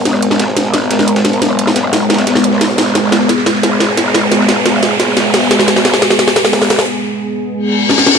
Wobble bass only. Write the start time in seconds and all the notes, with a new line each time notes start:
0.05 G#1
0.57 G#1
1.42 F#1
2.27 B1
2.78 G#1
3.63 G#1
4.58 G1
4.85 F#1
5.00 A#1
5.34 F#1
5.51 G#1
6.53 G#1